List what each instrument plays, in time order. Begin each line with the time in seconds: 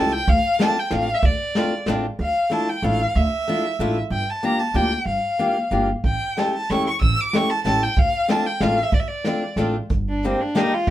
Already playing: upright bass C#2, steel-string acoustic guitar A3 C#4 E4 G4, violin A5
0.12 violin G5
0.27 upright bass D2, violin F5, kick, closed hi-hat
0.59 steel-string acoustic guitar A3 C4 D4 F4, violin A5, snare, closed hi-hat
0.79 violin G5
0.88 upright bass A1, steel-string acoustic guitar A3 C4, violin G5, snare, closed hi-hat
0.92 steel-string acoustic guitar D4 F4, violin F5
1.14 violin E5
1.22 upright bass D2, violin D5, kick, closed hi-hat
1.55 steel-string acoustic guitar A3 C4 D4 F4, snare, closed hi-hat
1.86 upright bass A1, steel-string acoustic guitar A3 C4 D4 F4, snare, closed hi-hat
2.19 upright bass D2, violin F5
2.50 steel-string acoustic guitar A3 D4 E4 F4, violin A5
2.69 violin G5
2.82 upright bass A1, steel-string acoustic guitar A3 D4 E4 F4, violin F5
3.15 upright bass D2, violin E5
3.48 steel-string acoustic guitar A3 D4 E4 F4
3.79 upright bass A1, steel-string acoustic guitar A3 D4 E4 F4
4.10 upright bass G1, violin G5
4.30 violin A5
4.43 steel-string acoustic guitar A#3 D4 F4 G4, violin A#5
4.59 violin A5
4.74 upright bass D2, steel-string acoustic guitar A#3 D4 F4 G4, violin G5
5.06 upright bass G1, violin F5
5.39 steel-string acoustic guitar A#3 D4 F4 G4
5.71 upright bass G1, steel-string acoustic guitar A#3 D4 F4 G4
6.04 upright bass A1, violin G5, kick, closed hi-hat
6.37 steel-string acoustic guitar A3 C#4 E4 G4, violin A5, snare, closed hi-hat
6.56 violin A5
6.70 upright bass E2, steel-string acoustic guitar A3 C#4 E4 G4, violin C#6, snare, closed hi-hat
6.87 violin C#6
7.01 upright bass A1, violin E6, kick, closed hi-hat
7.21 violin D6
7.33 steel-string acoustic guitar A3 C#4 E4 G4, violin C#6, snare, closed hi-hat
7.50 violin A5
7.64 upright bass A1, steel-string acoustic guitar A3 C#4 E4 G4, violin A5, snare, closed hi-hat
7.83 violin G5
7.96 upright bass D2, violin F5, kick, closed hi-hat
8.28 steel-string acoustic guitar A3 C4 D4 F4, violin A5, snare, closed hi-hat
8.46 violin G5
8.60 upright bass A1, steel-string acoustic guitar A3 C4 D4 F4, violin F5, snare, closed hi-hat
8.83 violin E5
8.92 upright bass D2, violin D5, kick, closed hi-hat
9.00 violin E5
9.08 violin D5
9.24 steel-string acoustic guitar A3 C4 D4 F4, snare, closed hi-hat
9.56 upright bass A1, steel-string acoustic guitar A3 C4 D4 F4, snare, closed hi-hat
9.90 upright bass G1, kick, closed hi-hat
10.09 violin D4
10.23 steel-string acoustic guitar G3 A#3 D4 G4, violin C4, closed hi-hat
10.41 violin D4
10.55 steel-string acoustic guitar G3 A#3 D4 G4, violin D#4, snare, closed hi-hat
10.74 violin F4